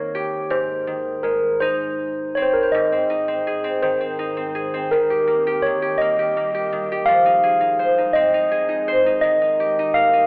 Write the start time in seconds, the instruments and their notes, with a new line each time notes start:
Already playing: harp D#3 A#3 C4 C5, handbells C#5
0.15 harp G4
0.50 harp G#2, handbells C5
0.87 harp D#3
1.23 harp G#3, handbells A#4
1.60 harp D#4, handbells C5
2.35 harp C4, handbells C#5
2.42 handbells C5
2.54 handbells A#4
2.63 handbells C5
2.72 ambient pad G#2 D#3 C4, harp G#2, handbells D#5
2.92 harp C4
3.10 harp D#4
3.28 harp C4
3.47 harp G#4
3.64 harp C4
3.82 harp D#3, handbells C5
4.01 harp C4
4.19 harp D#4
4.37 harp C4
4.55 harp G#4
4.74 harp C4
4.91 ambient pad D#2 A#2 G3, harp D#3, handbells A#4
5.10 harp G4
5.27 harp A#3
5.47 harp G4
5.62 harp D#3, handbells C#5
5.82 harp G4
5.98 harp A#3, handbells D#5
6.19 harp G4
6.37 harp A#3
6.54 harp G4
6.72 harp D#3
6.92 harp G4
7.06 ambient pad F2 D#3 G#3, harp F3, handbells F5
7.26 harp D#4
7.43 harp G#4
7.61 harp D#4
7.79 harp C5
7.98 harp D#4
8.13 harp C4, handbells D#5
8.34 harp D#4
8.52 harp G#4
8.69 harp D#4
8.88 harp C5
9.06 harp D#4
9.21 ambient pad D#2 A#2 G3, harp D#3, handbells D#5
9.42 harp D#4
9.60 harp G4
9.79 harp D#4
9.94 harp A#4, handbells F5
10.13 harp D#4